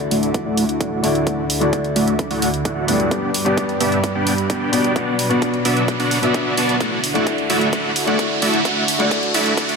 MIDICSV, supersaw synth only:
0, 0, Header, 1, 2, 480
1, 0, Start_track
1, 0, Key_signature, 2, "major"
1, 0, Tempo, 461538
1, 1318, Time_signature, 4, 2, 24, 8
1, 10154, End_track
2, 0, Start_track
2, 0, Title_t, "Supersaw synth"
2, 0, Program_c, 0, 81
2, 118, Note_on_c, 0, 57, 86
2, 118, Note_on_c, 0, 64, 75
2, 118, Note_on_c, 0, 66, 75
2, 118, Note_on_c, 0, 74, 79
2, 118, Note_on_c, 0, 76, 95
2, 309, Note_off_c, 0, 57, 0
2, 309, Note_off_c, 0, 64, 0
2, 309, Note_off_c, 0, 66, 0
2, 309, Note_off_c, 0, 74, 0
2, 309, Note_off_c, 0, 76, 0
2, 478, Note_on_c, 0, 57, 97
2, 478, Note_on_c, 0, 64, 90
2, 478, Note_on_c, 0, 66, 90
2, 478, Note_on_c, 0, 74, 91
2, 478, Note_on_c, 0, 78, 109
2, 669, Note_off_c, 0, 57, 0
2, 669, Note_off_c, 0, 64, 0
2, 669, Note_off_c, 0, 66, 0
2, 669, Note_off_c, 0, 74, 0
2, 669, Note_off_c, 0, 78, 0
2, 838, Note_on_c, 0, 57, 93
2, 838, Note_on_c, 0, 64, 85
2, 838, Note_on_c, 0, 66, 82
2, 838, Note_on_c, 0, 74, 89
2, 838, Note_on_c, 0, 78, 105
2, 1049, Note_off_c, 0, 57, 0
2, 1049, Note_off_c, 0, 64, 0
2, 1049, Note_off_c, 0, 66, 0
2, 1049, Note_off_c, 0, 74, 0
2, 1049, Note_off_c, 0, 78, 0
2, 1078, Note_on_c, 0, 57, 73
2, 1078, Note_on_c, 0, 64, 71
2, 1078, Note_on_c, 0, 66, 68
2, 1078, Note_on_c, 0, 74, 69
2, 1078, Note_on_c, 0, 78, 85
2, 1289, Note_off_c, 0, 57, 0
2, 1289, Note_off_c, 0, 64, 0
2, 1289, Note_off_c, 0, 66, 0
2, 1289, Note_off_c, 0, 74, 0
2, 1289, Note_off_c, 0, 78, 0
2, 1317, Note_on_c, 0, 57, 81
2, 1318, Note_on_c, 0, 64, 74
2, 1318, Note_on_c, 0, 66, 75
2, 1318, Note_on_c, 0, 74, 75
2, 1318, Note_on_c, 0, 78, 89
2, 1509, Note_off_c, 0, 57, 0
2, 1509, Note_off_c, 0, 64, 0
2, 1509, Note_off_c, 0, 66, 0
2, 1509, Note_off_c, 0, 74, 0
2, 1509, Note_off_c, 0, 78, 0
2, 1678, Note_on_c, 0, 57, 90
2, 1678, Note_on_c, 0, 64, 79
2, 1678, Note_on_c, 0, 66, 84
2, 1678, Note_on_c, 0, 74, 84
2, 1678, Note_on_c, 0, 78, 102
2, 1869, Note_off_c, 0, 57, 0
2, 1869, Note_off_c, 0, 64, 0
2, 1869, Note_off_c, 0, 66, 0
2, 1869, Note_off_c, 0, 74, 0
2, 1869, Note_off_c, 0, 78, 0
2, 2037, Note_on_c, 0, 57, 81
2, 2037, Note_on_c, 0, 66, 76
2, 2037, Note_on_c, 0, 74, 80
2, 2037, Note_on_c, 0, 76, 92
2, 2038, Note_on_c, 0, 64, 79
2, 2229, Note_off_c, 0, 57, 0
2, 2229, Note_off_c, 0, 64, 0
2, 2229, Note_off_c, 0, 66, 0
2, 2229, Note_off_c, 0, 74, 0
2, 2229, Note_off_c, 0, 76, 0
2, 2398, Note_on_c, 0, 57, 97
2, 2398, Note_on_c, 0, 64, 89
2, 2398, Note_on_c, 0, 66, 92
2, 2398, Note_on_c, 0, 74, 93
2, 2398, Note_on_c, 0, 78, 111
2, 2589, Note_off_c, 0, 57, 0
2, 2589, Note_off_c, 0, 64, 0
2, 2589, Note_off_c, 0, 66, 0
2, 2589, Note_off_c, 0, 74, 0
2, 2589, Note_off_c, 0, 78, 0
2, 2757, Note_on_c, 0, 57, 95
2, 2757, Note_on_c, 0, 66, 81
2, 2757, Note_on_c, 0, 74, 82
2, 2757, Note_on_c, 0, 78, 106
2, 2758, Note_on_c, 0, 64, 86
2, 2969, Note_off_c, 0, 57, 0
2, 2969, Note_off_c, 0, 64, 0
2, 2969, Note_off_c, 0, 66, 0
2, 2969, Note_off_c, 0, 74, 0
2, 2969, Note_off_c, 0, 78, 0
2, 2997, Note_on_c, 0, 57, 75
2, 2997, Note_on_c, 0, 64, 70
2, 2997, Note_on_c, 0, 74, 70
2, 2998, Note_on_c, 0, 66, 75
2, 2998, Note_on_c, 0, 78, 86
2, 3209, Note_off_c, 0, 57, 0
2, 3209, Note_off_c, 0, 64, 0
2, 3209, Note_off_c, 0, 66, 0
2, 3209, Note_off_c, 0, 74, 0
2, 3209, Note_off_c, 0, 78, 0
2, 3237, Note_on_c, 0, 62, 72
2, 3238, Note_on_c, 0, 59, 77
2, 3238, Note_on_c, 0, 67, 76
2, 3238, Note_on_c, 0, 74, 76
2, 3238, Note_on_c, 0, 79, 91
2, 3429, Note_off_c, 0, 59, 0
2, 3429, Note_off_c, 0, 62, 0
2, 3429, Note_off_c, 0, 67, 0
2, 3429, Note_off_c, 0, 74, 0
2, 3429, Note_off_c, 0, 79, 0
2, 3598, Note_on_c, 0, 59, 90
2, 3598, Note_on_c, 0, 62, 82
2, 3598, Note_on_c, 0, 67, 84
2, 3598, Note_on_c, 0, 74, 82
2, 3598, Note_on_c, 0, 79, 102
2, 3789, Note_off_c, 0, 59, 0
2, 3789, Note_off_c, 0, 62, 0
2, 3789, Note_off_c, 0, 67, 0
2, 3789, Note_off_c, 0, 74, 0
2, 3789, Note_off_c, 0, 79, 0
2, 3957, Note_on_c, 0, 76, 97
2, 3958, Note_on_c, 0, 59, 85
2, 3958, Note_on_c, 0, 62, 78
2, 3958, Note_on_c, 0, 67, 80
2, 3958, Note_on_c, 0, 74, 76
2, 4149, Note_off_c, 0, 59, 0
2, 4149, Note_off_c, 0, 62, 0
2, 4149, Note_off_c, 0, 67, 0
2, 4149, Note_off_c, 0, 74, 0
2, 4149, Note_off_c, 0, 76, 0
2, 4317, Note_on_c, 0, 59, 96
2, 4317, Note_on_c, 0, 62, 88
2, 4317, Note_on_c, 0, 74, 91
2, 4318, Note_on_c, 0, 67, 88
2, 4318, Note_on_c, 0, 79, 109
2, 4509, Note_off_c, 0, 59, 0
2, 4509, Note_off_c, 0, 62, 0
2, 4509, Note_off_c, 0, 67, 0
2, 4509, Note_off_c, 0, 74, 0
2, 4509, Note_off_c, 0, 79, 0
2, 4678, Note_on_c, 0, 59, 96
2, 4678, Note_on_c, 0, 62, 86
2, 4678, Note_on_c, 0, 67, 86
2, 4678, Note_on_c, 0, 74, 85
2, 4678, Note_on_c, 0, 79, 97
2, 4889, Note_off_c, 0, 59, 0
2, 4889, Note_off_c, 0, 62, 0
2, 4889, Note_off_c, 0, 67, 0
2, 4889, Note_off_c, 0, 74, 0
2, 4889, Note_off_c, 0, 79, 0
2, 4917, Note_on_c, 0, 59, 78
2, 4917, Note_on_c, 0, 67, 75
2, 4917, Note_on_c, 0, 74, 73
2, 4917, Note_on_c, 0, 79, 86
2, 4918, Note_on_c, 0, 62, 73
2, 5129, Note_off_c, 0, 59, 0
2, 5129, Note_off_c, 0, 62, 0
2, 5129, Note_off_c, 0, 67, 0
2, 5129, Note_off_c, 0, 74, 0
2, 5129, Note_off_c, 0, 79, 0
2, 5158, Note_on_c, 0, 59, 79
2, 5158, Note_on_c, 0, 62, 75
2, 5158, Note_on_c, 0, 66, 73
2, 5158, Note_on_c, 0, 74, 75
2, 5158, Note_on_c, 0, 78, 92
2, 5349, Note_off_c, 0, 59, 0
2, 5349, Note_off_c, 0, 62, 0
2, 5349, Note_off_c, 0, 66, 0
2, 5349, Note_off_c, 0, 74, 0
2, 5349, Note_off_c, 0, 78, 0
2, 5518, Note_on_c, 0, 59, 87
2, 5518, Note_on_c, 0, 62, 85
2, 5518, Note_on_c, 0, 66, 84
2, 5518, Note_on_c, 0, 74, 83
2, 5518, Note_on_c, 0, 78, 99
2, 5709, Note_off_c, 0, 59, 0
2, 5709, Note_off_c, 0, 62, 0
2, 5709, Note_off_c, 0, 66, 0
2, 5709, Note_off_c, 0, 74, 0
2, 5709, Note_off_c, 0, 78, 0
2, 5878, Note_on_c, 0, 59, 84
2, 5878, Note_on_c, 0, 62, 78
2, 5878, Note_on_c, 0, 66, 81
2, 5878, Note_on_c, 0, 74, 82
2, 5878, Note_on_c, 0, 76, 89
2, 6069, Note_off_c, 0, 59, 0
2, 6069, Note_off_c, 0, 62, 0
2, 6069, Note_off_c, 0, 66, 0
2, 6069, Note_off_c, 0, 74, 0
2, 6069, Note_off_c, 0, 76, 0
2, 6238, Note_on_c, 0, 59, 100
2, 6238, Note_on_c, 0, 62, 90
2, 6238, Note_on_c, 0, 66, 87
2, 6238, Note_on_c, 0, 74, 91
2, 6238, Note_on_c, 0, 78, 114
2, 6429, Note_off_c, 0, 59, 0
2, 6429, Note_off_c, 0, 62, 0
2, 6429, Note_off_c, 0, 66, 0
2, 6429, Note_off_c, 0, 74, 0
2, 6429, Note_off_c, 0, 78, 0
2, 6478, Note_on_c, 0, 59, 82
2, 6478, Note_on_c, 0, 62, 74
2, 6478, Note_on_c, 0, 66, 77
2, 6478, Note_on_c, 0, 74, 76
2, 6478, Note_on_c, 0, 76, 93
2, 6809, Note_off_c, 0, 59, 0
2, 6809, Note_off_c, 0, 62, 0
2, 6809, Note_off_c, 0, 66, 0
2, 6809, Note_off_c, 0, 74, 0
2, 6809, Note_off_c, 0, 76, 0
2, 6838, Note_on_c, 0, 59, 88
2, 6838, Note_on_c, 0, 62, 77
2, 6838, Note_on_c, 0, 66, 84
2, 6838, Note_on_c, 0, 74, 80
2, 6838, Note_on_c, 0, 81, 95
2, 7029, Note_off_c, 0, 59, 0
2, 7029, Note_off_c, 0, 62, 0
2, 7029, Note_off_c, 0, 66, 0
2, 7029, Note_off_c, 0, 74, 0
2, 7029, Note_off_c, 0, 81, 0
2, 7078, Note_on_c, 0, 57, 74
2, 7078, Note_on_c, 0, 64, 71
2, 7078, Note_on_c, 0, 66, 72
2, 7078, Note_on_c, 0, 74, 72
2, 7078, Note_on_c, 0, 78, 81
2, 7269, Note_off_c, 0, 57, 0
2, 7269, Note_off_c, 0, 64, 0
2, 7269, Note_off_c, 0, 66, 0
2, 7269, Note_off_c, 0, 74, 0
2, 7269, Note_off_c, 0, 78, 0
2, 7437, Note_on_c, 0, 57, 89
2, 7438, Note_on_c, 0, 64, 73
2, 7438, Note_on_c, 0, 66, 76
2, 7438, Note_on_c, 0, 74, 76
2, 7438, Note_on_c, 0, 78, 92
2, 7629, Note_off_c, 0, 57, 0
2, 7629, Note_off_c, 0, 64, 0
2, 7629, Note_off_c, 0, 66, 0
2, 7629, Note_off_c, 0, 74, 0
2, 7629, Note_off_c, 0, 78, 0
2, 7798, Note_on_c, 0, 57, 78
2, 7798, Note_on_c, 0, 64, 75
2, 7798, Note_on_c, 0, 66, 73
2, 7798, Note_on_c, 0, 74, 72
2, 7798, Note_on_c, 0, 76, 82
2, 7989, Note_off_c, 0, 57, 0
2, 7989, Note_off_c, 0, 64, 0
2, 7989, Note_off_c, 0, 66, 0
2, 7989, Note_off_c, 0, 74, 0
2, 7989, Note_off_c, 0, 76, 0
2, 8038, Note_on_c, 0, 57, 64
2, 8038, Note_on_c, 0, 64, 62
2, 8038, Note_on_c, 0, 66, 65
2, 8038, Note_on_c, 0, 74, 60
2, 8038, Note_on_c, 0, 78, 78
2, 8229, Note_off_c, 0, 57, 0
2, 8229, Note_off_c, 0, 64, 0
2, 8229, Note_off_c, 0, 78, 0
2, 8230, Note_off_c, 0, 66, 0
2, 8230, Note_off_c, 0, 74, 0
2, 8398, Note_on_c, 0, 57, 88
2, 8398, Note_on_c, 0, 64, 77
2, 8398, Note_on_c, 0, 66, 78
2, 8398, Note_on_c, 0, 74, 84
2, 8398, Note_on_c, 0, 78, 97
2, 8589, Note_off_c, 0, 57, 0
2, 8589, Note_off_c, 0, 64, 0
2, 8589, Note_off_c, 0, 66, 0
2, 8589, Note_off_c, 0, 74, 0
2, 8589, Note_off_c, 0, 78, 0
2, 8758, Note_on_c, 0, 57, 78
2, 8758, Note_on_c, 0, 64, 70
2, 8758, Note_on_c, 0, 66, 74
2, 8758, Note_on_c, 0, 74, 74
2, 8758, Note_on_c, 0, 76, 85
2, 8949, Note_off_c, 0, 57, 0
2, 8949, Note_off_c, 0, 64, 0
2, 8949, Note_off_c, 0, 66, 0
2, 8949, Note_off_c, 0, 74, 0
2, 8949, Note_off_c, 0, 76, 0
2, 8998, Note_on_c, 0, 57, 79
2, 8998, Note_on_c, 0, 64, 69
2, 8998, Note_on_c, 0, 66, 74
2, 8998, Note_on_c, 0, 74, 73
2, 8998, Note_on_c, 0, 78, 87
2, 9189, Note_off_c, 0, 57, 0
2, 9189, Note_off_c, 0, 64, 0
2, 9189, Note_off_c, 0, 66, 0
2, 9189, Note_off_c, 0, 74, 0
2, 9189, Note_off_c, 0, 78, 0
2, 9358, Note_on_c, 0, 57, 89
2, 9358, Note_on_c, 0, 64, 85
2, 9358, Note_on_c, 0, 66, 80
2, 9358, Note_on_c, 0, 74, 83
2, 9358, Note_on_c, 0, 78, 96
2, 9549, Note_off_c, 0, 57, 0
2, 9549, Note_off_c, 0, 64, 0
2, 9549, Note_off_c, 0, 66, 0
2, 9549, Note_off_c, 0, 74, 0
2, 9549, Note_off_c, 0, 78, 0
2, 9717, Note_on_c, 0, 57, 83
2, 9717, Note_on_c, 0, 64, 75
2, 9717, Note_on_c, 0, 66, 75
2, 9717, Note_on_c, 0, 74, 71
2, 9717, Note_on_c, 0, 76, 92
2, 9909, Note_off_c, 0, 57, 0
2, 9909, Note_off_c, 0, 64, 0
2, 9909, Note_off_c, 0, 66, 0
2, 9909, Note_off_c, 0, 74, 0
2, 9909, Note_off_c, 0, 76, 0
2, 9957, Note_on_c, 0, 57, 70
2, 9957, Note_on_c, 0, 64, 67
2, 9957, Note_on_c, 0, 66, 66
2, 9957, Note_on_c, 0, 74, 66
2, 9957, Note_on_c, 0, 78, 77
2, 10149, Note_off_c, 0, 57, 0
2, 10149, Note_off_c, 0, 64, 0
2, 10149, Note_off_c, 0, 66, 0
2, 10149, Note_off_c, 0, 74, 0
2, 10149, Note_off_c, 0, 78, 0
2, 10154, End_track
0, 0, End_of_file